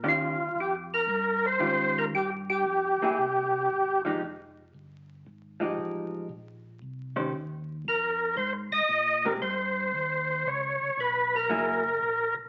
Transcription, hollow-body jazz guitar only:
X:1
M:4/4
L:1/8
Q:"Swing" 1/4=115
K:Ebmix
V:1 name="Hollow-body jazz guitar"
[E,DFG] z4 z [E,DFG]2 | z3 [B,_FA] z3 [=F,A,EG] | z4 z [F,A,EG]3 | z3 [E,DGc] z4 |
z3 [A,CGB] z4 | z4 [_G,B,_FA] z3 |]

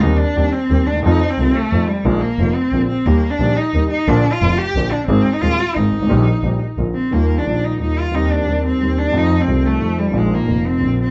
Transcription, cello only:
X:1
M:3/4
L:1/16
Q:1/4=178
K:Eb
V:1 name="Cello"
E2 D4 C4 D2 | E3 C3 =A,4 G,2 | A,2 B,4 C4 C2 | B,3 D3 E4 E2 |
D3 F3 G4 D2 | C3 E F4 E4- | E8 z2 C2 | B,3 D3 E2 E2 F2 |
E2 D4 C4 D2 | E3 C3 =A,4 G,2 | A,2 B,4 C4 C2 |]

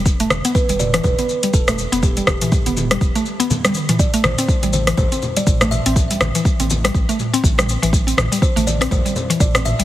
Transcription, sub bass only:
X:1
M:4/4
L:1/16
Q:"Swing 16ths" 1/4=122
K:Am
V:1 name="Sub bass" clef=bass
E,,,2 E,,, z2 E,,,3 E,,, z3 E,,,3 E,,,- | E,,,2 E,,, z2 E,,,3 E,,, z6 z | z2 A,,, z2 A,,,3 A,,, z3 A,,,3 A,,,- | A,,,2 A,,, z2 A,,,3 A,,, z3 A,,,3 A,,,- |
A,,,2 A,,, z2 A,,,3 A,,, z3 A,,,3 A,,, |]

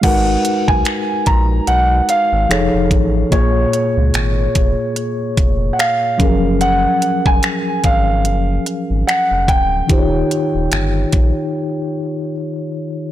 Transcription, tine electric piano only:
X:1
M:4/4
L:1/8
Q:"Swing 16ths" 1/4=73
K:G#dor
V:1 name="Tine electric piano"
[G,DFAB]6 [=F,_EG=Ac]2 | [A,,A,EGc]6- [A,,A,EGc] [E,F,CGA]- | [E,F,CGA]6- [E,F,CGA] z | [D,DE=G^Bc]8 |]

